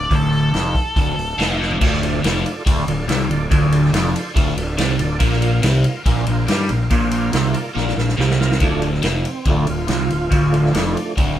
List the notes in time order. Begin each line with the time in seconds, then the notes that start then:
Already playing: D5
0.10 D1 D2 A4, kick, open hi-hat
0.32 open hi-hat
0.53 F1 F2, snare, open hi-hat
0.75 kick, open hi-hat
0.96 D1 D2, kick, open hi-hat
1.17 D1 D2, open hi-hat
1.38 F1 F2, snare, open hi-hat
1.62 snare
1.71 floor tom
1.81 D1 D2 D4 F4 A4 D5, kick, crash
1.94 snare
2.02 D4 F4 A4 D5, ride
2.23 F1 F2 D4 F4 A4 D5, snare, ride
2.45 D4 F4 A4 D5, ride
2.66 D1 D2 D4 F4 A4 C5, kick, ride
2.87 D1 D2 D4 F4 A4 D5, ride
3.08 C2 C3 D4 F4 A4 E5, snare, ride
3.28 D1 D2 D4 F4 A4 D5, ride
3.50 D1 D2 D4 F4 A4 D5, kick, ride
3.71 D4 F4 A4 D5, ride
3.85 snare
3.93 F1 F2 D4 F4 A4 D5, snare, ride
4.14 D4 F4 A4 C5, ride
4.34 D1 D2 D4 F4 A4 F5, kick, ride
4.55 D1 D2 D4 F4 A4 E5, ride
4.76 C2 C3 D4 F4 A4 D5, snare, ride
4.99 D1 D2 D4 F4 A4 D5, ride
5.19 A#1 A#2 A#3 F4 A#4 F5, kick, ride
5.32 snare
5.40 A#3 F4 A#4 F5, ride
5.62 C2 C3 A#3 F4 A#4 G5, snare, ride
5.84 A#3 F4 A#4 F5, ride
6.06 A#1 A#2 A#3 F4 A#4 E5, kick, ride
6.26 A#1 A#2 A#3 F4 A#4 C5, ride
6.47 G2 G3 A#3 F4 A#4 F5, snare, ride
6.69 A#1 A#2 A#3 F4 A#4 C5, ride
6.90 A#1 A#2 A#3 F4 A#4 F5, kick, ride
7.11 A#3 F4 A#4 F5, ride
7.32 C2 C3 A#3 F4 A#4 F5, snare, ride
7.52 A#3 F4 A#4 D5, ride
7.73 A#1 A#2 A#3 F4 A#4 F5
7.77 snare
7.88 snare
7.96 A#1 A#2 A#3 F4 A#4 F5, snare
8.09 snare
8.16 C2 C3 A#3 F4 A#4 F5
8.20 snare
8.30 snare
8.39 A#3 F4 A#4 F5, snare
8.51 snare
8.60 D1 D2 F3 A3 D4, kick, ride
8.82 ride
8.94 snare
9.03 F1 F2, snare, ride
9.25 C4, ride
9.45 D1 D2 F3, kick, ride
9.49 A3 D4
9.67 D1 D2 F4, ride
9.87 C2 C3 E4 F4, snare, ride
10.09 D1 D2, ride
10.30 D1 D2, kick, ride
10.52 F3 A3 D4, ride
10.65 snare
10.73 F1 F2, snare, ride
10.97 ride
11.17 D1 D2, kick, ride